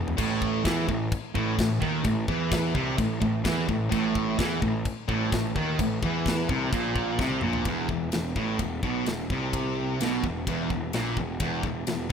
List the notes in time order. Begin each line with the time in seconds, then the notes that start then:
Already playing: E1 E2
0.08 floor tom
0.17 A1 A2, kick, crash
0.42 kick
0.64 E2 E3, kick, snare, crash
0.88 A1 A2, kick
1.12 kick, crash
1.35 A1 A2, kick
1.57 A1 A2, kick, snare, crash
1.80 D#2 D#3, kick
2.04 A1 A2, kick, crash
2.28 E2 E3, kick
2.51 kick, snare, crash
2.75 C2 C3, kick
2.98 A1 A2, kick, crash
3.21 A1 A2, kick
3.45 E2 E3, kick, snare, crash
3.69 A1 A2, kick
3.91 A1 A2, kick, crash
4.15 kick
4.39 E2 E3, kick, snare, crash
4.62 A1 A2, kick
4.85 kick, crash
5.08 A1 A2, kick
5.32 A1 A2, kick, snare, crash
5.55 D#2 D#3, kick
5.79 A1 A2, kick, crash
6.03 E2 E3, kick
6.26 kick, snare, crash
6.49 C2 C3, kick
6.72 A#1 A#2, kick, crash
6.96 kick
7.19 C2 C3, kick, snare
7.30 high tom
7.41 A#1 A#2, mid tom
7.53 floor tom
7.65 E1 E2, kick, ride bell
7.89 E1 E2, kick
8.12 E1 E2, snare, ride bell
8.36 A1 A2, kick
8.59 E1 E2, kick, ride bell
8.83 B1 B2, kick
9.06 E1 E2, snare, ride bell
9.30 C2 C3, kick
9.53 kick, ride bell
10.00 B1 B2, snare, ride bell
10.23 E1 E2, kick
10.47 E1 E2, kick, ride bell
10.70 E1 E2, kick
10.93 A#1 A#2, snare, ride bell
11.17 E1 E2, kick
11.40 E1 E2, kick, ride bell
11.63 E1 E2, kick
11.87 E1 E2, snare, ride bell